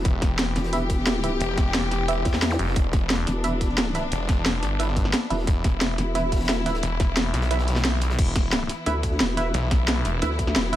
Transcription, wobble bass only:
0.56 1.39 E1 loud
2.25 2.58 E2 medium
3.27 4.10 E1 loud
5.30 5.46 E1 loud
5.98 6.57 E1 loud
6.57 6.82 D#1 loud
8.86 9.19 D2 loud
9.20 9.53 E1 loud
10.22 10.54 D2 loud
10.56 10.76 E1 loud

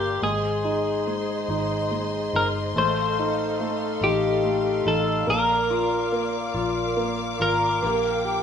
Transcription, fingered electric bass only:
0.00 0.19 G1 medium
0.22 1.45 G#1 medium
1.48 2.29 G#1 medium
2.33 2.73 G1 medium
2.75 3.98 A1 medium
4.01 4.82 A1 medium
4.85 5.25 A1 medium
5.27 6.51 A#1 medium
6.54 7.36 A#1 medium
7.39 7.80 G#1 medium
7.83 8.43 A#1 medium

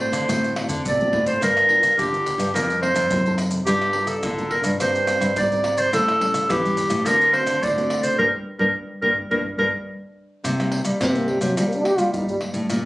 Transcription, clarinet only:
0.00 0.54 C5 medium
0.87 1.25 D5 medium
1.27 1.40 C5 medium
1.43 1.95 A#4 loud
1.98 2.50 G4 loud
2.54 2.81 A#4 medium
2.82 3.35 C5 medium
3.66 4.09 G4 loud
4.07 4.50 A4 medium
4.51 4.64 A#4 medium
4.81 5.33 C5 medium
5.38 5.80 D5 medium
5.78 5.93 C5 medium
5.93 6.51 A4 loud
6.50 7.07 G4 medium
7.06 7.34 A#4 loud
7.33 7.64 C5 medium
7.62 8.02 D5 medium
8.03 8.17 C5 medium
8.18 8.25 A#4 loud
8.59 8.66 A#4 medium
9.02 9.09 A#4 medium
9.31 9.38 A#4 medium
9.58 9.65 A#4 loud

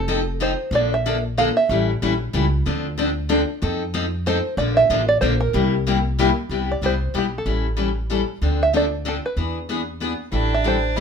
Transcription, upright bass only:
0.00 0.53 F1 medium
0.71 1.49 A#1 medium
1.69 1.95 A1 medium
2.02 2.29 A#1 medium
2.34 2.61 C#2 medium
2.66 3.43 D2 medium
3.62 4.39 F2 medium
4.57 4.83 A#1 medium
4.90 5.17 A1 medium
5.22 5.49 A#1 medium
5.54 6.31 C2 medium
6.49 6.75 C2 medium
6.82 7.09 C2 medium
7.15 7.42 B1 medium
7.46 8.22 A1 medium
8.41 9.18 D2 medium
9.37 10.13 E2 medium
10.32 11.00 A1 medium

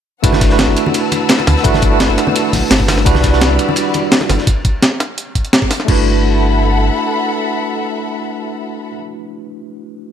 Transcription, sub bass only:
0.24 0.67 G1 loud
0.68 0.76 G1 loud
1.47 1.55 D2 loud
1.65 2.08 G1 loud
2.09 2.17 G1 loud
2.53 2.61 B1 medium
2.71 3.05 G1 medium
3.06 3.49 C2 loud
3.50 3.58 C2 loud
4.30 4.38 G1 loud
5.88 6.90 G1 loud

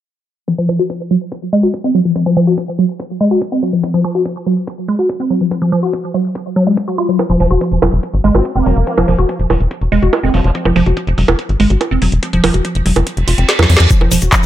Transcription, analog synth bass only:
7.30 7.37 F1 medium
7.40 7.47 F1 loud
7.51 7.58 F1 medium
7.72 7.79 F1 medium
7.82 7.89 F1 loud
7.93 8.00 F1 medium
8.14 8.20 G#1 medium
8.24 8.31 G#1 medium
8.35 8.41 G#1 medium
8.56 8.62 F1 medium
8.66 8.73 F1 loud
8.77 8.83 F1 medium
8.98 9.04 F1 medium
9.08 9.15 F1 loud
9.19 9.25 F1 medium
9.39 9.46 F1 medium
9.50 9.57 F1 loud
9.60 9.67 F1 medium
9.81 9.88 F1 medium
9.92 9.99 F1 loud
10.02 10.09 F1 medium
10.23 10.30 F1 medium
10.34 10.41 F1 loud
10.44 10.51 F1 medium
10.65 10.72 F1 medium
10.76 10.83 F1 loud
10.86 10.93 F1 medium
11.07 11.14 F1 medium
11.18 11.25 F1 loud
11.28 11.35 F1 medium
11.49 11.56 G#1 medium
11.60 11.67 G#1 loud
11.70 11.77 G#1 medium
11.91 11.98 F1 medium
12.02 12.09 F1 loud
12.12 12.19 F1 medium
12.33 12.40 F1 medium
12.44 12.51 F1 medium
12.54 12.61 F1 medium
12.75 12.82 F1 medium
12.86 12.93 F1 loud
12.96 13.03 F1 medium
13.17 13.24 F1 medium
13.28 13.34 F1 loud
13.38 13.45 F1 loud
13.59 13.66 F2 medium
13.70 13.76 F2 loud
13.80 13.87 F2 medium
14.01 14.08 F1 medium
14.12 14.18 F1 loud
14.22 14.29 F1 medium

